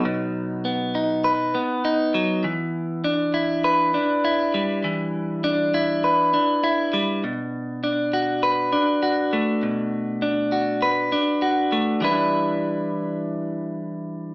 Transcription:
\new Staff \with { instrumentName = "Clean electric guitar" } { \time 4/4 \key e \minor \tempo 4 = 100 <b, fis b dis' b'>4 b8 dis'8 b'8 b8 dis'8 fis8 | e4 d'8 e'8 b'8 d'8 e'8 g8 | e4 d'8 e'8 b'8 d'8 e'8 g8 | b,4 d'8 fis'8 b'8 d'8 fis'8 a8 |
b,4 d'8 fis'8 b'8 d'8 fis'8 a8 | <e g d' e' b'>1 | }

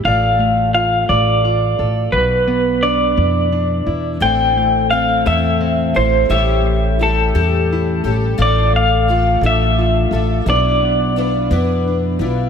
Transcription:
<<
  \new Staff \with { instrumentName = "Clean electric guitar" } { \time 6/8 \key a \minor \tempo 4. = 58 f''4 f''8 d''4. | b'4 d''2 | g''4 f''8 e''4 c''8 | e''4 a'4. r8 |
d''8 f''4 e''4. | d''2 r4 | }
  \new Staff \with { instrumentName = "Steel-string acoustic guitar" } { \time 6/8 \key a \minor << { <a f' a' d''>4 f'8 a'8 f'8 a'8 | r4 d'8 e'8 d'8 e'8 | <a c' c''>4 c'8 e'8 c'8 e'8 | <a e' g' cis''>4 e'8 g'8 e'8 g'8 |
r4 f'8 a'8 f'8 a'8 | <b d' e'>4 d'8 e'8 d'8 e'8 | } \\ { a,8 a2~ a8 | b,8 b2~ b8 | a,8 a2~ a8 | a,8 a2~ a8 |
a,8 a2~ a8 | b,8 b2~ b8 | } >> }
  \new Staff \with { instrumentName = "Twelve-string acoustic guitar" } { \time 6/8 \key a \minor r2. | r2. | <a c' e' a'>4 <a c' a'>8 <a c' e' a'>4 <c' e' a'>8 | <a, e g cis' g' a'>4 <g cis' g' a'>8 <a, e g cis' g' a'>4 <g cis' g' a'>8 |
<a, f a d' f' a'>4 <a d' f' a'>8 <a, f a d' f' a'>4 <a d' f' a'>8 | <b d' b'>4 <b d' f' b'>8 <b d' b'>4 <d' f' b'>8 | }
  \new Staff \with { instrumentName = "Upright bass" } { \clef bass \time 6/8 \key a \minor a,,4. a,,4 a,,8 | b,,4. f,4 e,8 | a,,4. e,4 a,,8 | a,,4. e,4 a,,8 |
a,,4. a,,4 a,,8 | b,,4. f,4 b,,8 | }
>>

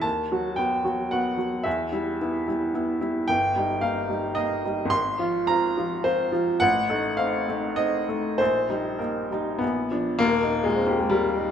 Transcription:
\new Staff \with { instrumentName = "Upright piano" } { \time 3/4 \key b \phrygian \tempo 4 = 109 << { a''4 g''4 fis''4 | e''4. r4. | \key ees \major g''4 f''4 ees''4 | c'''4 bes''4 c''4 |
fis''4 f''4 ees''4 | c''4 bes'4 ces'4 | bes4 aes16 c'16 bes16 aes16 g4 | } \\ { dis,8 <fis fis'>8 <b fis'>8 <fis fis'>8 <b fis'>8 <fis fis'>8 | e,8 <g e'>8 <b e'>8 <g e'>8 <b e'>8 <g e'>8 | g,,8 <g ees'>8 <bes ees'>8 <g ees'>8 <bes ees'>8 <g ees'>8 | aes,,8 <f f'>8 <c' f'>8 <f f'>8 <c' f'>8 <f f'>8 |
a,,8 <a ees'>8 <c' ees'>8 <a ees'>8 <c' ees'>8 <a ees'>8 | bes,,8 <g ees'>8 <bes ees'>8 <g ees'>8 bes,,8 <f d'>8 | <ees,, ees,>8 ees'8 bes,8 g'8 bes'8 ees'8 | } >> }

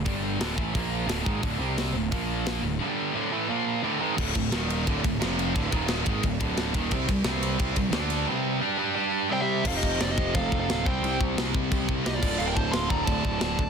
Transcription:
<<
  \new Staff \with { instrumentName = "Lead electric guitar" } { \time 4/4 \key bes \major \tempo 4 = 175 r1 | r1 | r1 | \key d \minor r1 |
r1 | r1 | r2. g''16 e''8. | \key f \mixolydian f''16 ees''8. d''16 ees''8. f''8. f''8. g''8~ |
g''8 r2 r8 ees''16 d''8. | f''16 g''16 a''8 c'''8 bes''8 a''4 a''4 | }
  \new Staff \with { instrumentName = "Lead electric guitar" } { \time 4/4 \key bes \major r1 | r1 | r1 | \key d \minor r1 |
r1 | r1 | r2. c''16 g'8. | \key f \mixolydian a'16 g'8. f'16 g'8. a'8. a'8. c''8~ |
c''8 r2 r8 g'16 f'8. | a'16 bes'16 c''8 f''8 d''8 d''4 d''4 | }
  \new Staff \with { instrumentName = "Distorted electric guitar" } { \clef bass \time 4/4 \key bes \major <g, d g>4 <d, a, d>8 <a, e a>8 <bes, f bes>4 <d, a, d>8 <gis, ees gis>8 | <d, a, d>8 <c g c'>4 <d, a,>8 <bes, f bes>4. <d, a,>8 | <g, d g>4 <d, a, d>8 <a, e a>8 <bes, f bes>4 <d, a, d>8 <gis, ees gis>8 | \key d \minor <d, a, d>8 <d, a,>8 <ees, bes, ees>4 <d, a, d>8 <d, a,>8 <f, c f>4 |
<d, a, d>8 <ees, bes, ees>4 <gis, ees gis>8 <d, a,>8 <d, a, d>4 <ees, bes, ees>8 | <c g c'>8 <c g>8 <c g c'>4 <c g c'>8 <c g>8 <d a d'>4 | <c g c'>4 <g d' g'>8 <g d' g'>8 <g d' g'>4 <c g c'>4 | \key f \mixolydian <f, c f>2.~ <f, c f>8 <c g c'>8~ |
<c g c'>2. <c g c'>8 <d, a, d>8~ | <d, a, d>2. <d, a, d>8 r8 | }
  \new Staff \with { instrumentName = "Distorted electric guitar" } { \clef bass \time 4/4 \key bes \major <g, d g>4 <d, a, d>8 <a, e a>8 <bes, f bes>4 <d, a, d>8 <gis, ees gis>8 | <d, a, d>8 <c g c'>4 <d, a,>8 <bes, f bes>4. <d, a,>8 | <g, d g>4 <d, a, d>8 <a, e a>8 <bes, f bes>4 <d, a, d>8 <gis, ees gis>8 | \key d \minor <d, a, d>8 <d, a,>8 <ees, bes, ees>4 <d, a, d>8 <d, a,>8 <f, c f>4 |
<d, a, d>8 <ees, bes, ees>4 <gis, ees gis>8 <d, a,>8 <d, a, d>4 <ees, bes, ees>8 | <c g c'>8 <c g>8 <c g c'>4 <c g c'>8 <c g>8 <d a d'>4 | <c g c'>4 <g d' g'>8 <g d' g'>8 <g d' g'>4 <c g c'>4 | \key f \mixolydian <f, c f>2.~ <f, c f>8 <c g c'>8~ |
<c g c'>2.~ <c g c'>8 <d, a, d>8~ | <d, a, d>2.~ <d, a, d>8 r8 | }
  \new Staff \with { instrumentName = "Picked electric bass" } { \clef bass \time 4/4 \key bes \major g,,4 d,,8 a,,8 bes,,4 d,,8 gis,,8 | d,,8 c,4 d,,8 bes,,4. d,,8 | r1 | \key d \minor d,,8 d,,8 ees,,4 d,,8 d,,8 f,,4 |
d,,8 ees,,4 gis,,8 d,,8 d,,4 ees,,8 | c,8 c,8 c,4 c,8 c,8 d,4 | r1 | \key f \mixolydian f,,8 f,,8 f,,8 f,,8 f,,8 f,,8 d,,8 c,8 |
c,8 c,8 c,8 c,8 c,8 c,8 c,8 d,,8 | d,,8 d,,8 d,,8 d,,8 d,,8 d,,8 d,,8 d,,8 | }
  \new DrumStaff \with { instrumentName = "Drums" } \drummode { \time 4/4 <hho bd>4 <hho sn>8 bd8 <hho bd>4 <hho sn>8 bd8 | <hho bd>4 <hho sn>4 <hho bd>4 <hho sn>4 | r4 r4 r4 r4 | <cymc bd>8 <bd cymr>8 <cymr sn>8 cymr8 <bd cymr>8 <bd cymr>8 <cymr sn>8 cymr8 |
<bd cymr>8 <bd cymr>8 <cymr sn>8 <bd cymr>8 <bd cymr>8 <bd cymr>8 <cymr sn>8 <bd cymr>8 | <bd cymr>8 <bd cymr>8 <cymr sn>8 cymr8 <bd cymr>8 <bd cymr>8 <cymr sn>8 cymr8 | r4 r4 r4 r4 | <cymc bd>8 bd8 <cymc sn>8 bd8 <cymc bd>8 bd8 <cymc sn>8 bd8 |
cymc8 bd8 <cymc sn>8 bd8 <cymc bd>8 bd8 <cymc sn>8 <cymc bd>8 | cymc8 bd8 <cymc sn>8 bd8 <cymc bd>8 bd8 <cymc sn>8 bd8 | }
>>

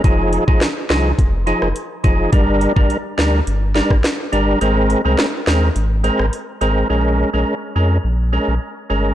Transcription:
<<
  \new Staff \with { instrumentName = "Tonewheel organ" } { \time 4/4 \key bes \dorian \tempo 4 = 105 <f ees' aes'>8. <f ees' aes'>16 r8 <f ees' aes'>8 r8 <f ees' aes'>8 r8 <f ees' aes'>8 | <g d' bes'>8. <g d' bes'>16 r8 <g d' bes'>8 r8 <g d' bes'>8 r8 <g d' bes'>8 | <aes c' bes'>8. <aes c' bes'>16 r8 <aes c' bes'>8 r8 <aes c' bes'>8 r8 <aes c' bes'>8 | <aes des' bes'>8. <aes des' bes'>16 r8 <aes des' bes'>8 r8 <aes des' bes'>8 r8 <aes des' bes'>8 | }
  \new Staff \with { instrumentName = "Sub bass" } { \clef bass \time 4/4 \key bes \dorian f,,8. aes,,16 r8 c,8 f,,8. f,,16 r8 f,,8 | g,,8. g,,16 r8 d,8 g,,8. g,,16 r8 g,,8 | aes,,8. c,16 r8 ees,8 aes,,8. aes,,16 r8 aes,,8 | bes,,8. bes,,16 r8 f,8 bes,,8. bes,,16 r8 g,,8 | }
  \new DrumStaff \with { instrumentName = "Drums" } \drummode { \time 4/4 <hh bd>8 hh16 bd16 <hh sn>8 <hh sn>8 <hh bd>8 hh16 ss16 hh8 <hh bd>8 | <hh bd>8 hh16 bd16 hh8 <hh sn>8 hh8 <hh sn>16 <bd ss>16 <hh sn>8 hh8 | hh8 hh8 <hh sn>8 <hh sn>8 hh8 hh16 ss16 hh8 hh8 | r4 r4 r4 r4 | }
>>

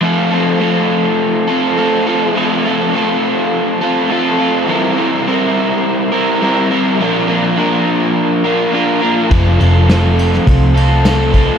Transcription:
<<
  \new Staff \with { instrumentName = "Overdriven electric guitar" } { \time 4/4 \key f \major \tempo 4 = 104 <f a c' f' a'>8 <c' f' a'>8 <a c' f' a'>4. <c' f' a'>8 <a c' f' a'>8 <c' f' a'>8 | <f a c' f' a'>8 <c' f' a'>8 <a c' f' a'>4. <c' f' a'>8 <a c' f' a'>8 <c' f' a'>8 | <c e g c' e' bes'>8 <g c' e' bes'>8 <g c' e' bes'>4. <g c' e' bes'>8 <g c' e' bes'>8 <g c' e' bes'>8 | <bes, f bes d' f' bes'>8 <bes d' f' bes'>8 <bes d' f' bes'>4. <bes d' f' bes'>8 <bes d' f' bes'>8 <bes d' f' bes'>8 |
<f a c' f' a'>8 <c' f' a'>8 <a c' f' a'>4. <c' f' a'>8 <a c' f' a'>8 <c' f' a'>8 | }
  \new Staff \with { instrumentName = "Picked electric bass" } { \clef bass \time 4/4 \key f \major r1 | r1 | r1 | r1 |
f,,8 f,,4. c,2 | }
  \new DrumStaff \with { instrumentName = "Drums" } \drummode { \time 4/4 r4 r4 r4 r4 | r4 r4 r4 r4 | r4 r4 r4 r4 | r4 r4 r4 r4 |
<cymc bd>8 cymr8 <cymr sn>8 cymr16 sn16 <bd cymr>8 cymr8 <cymr sn>8 <bd cymr>8 | }
>>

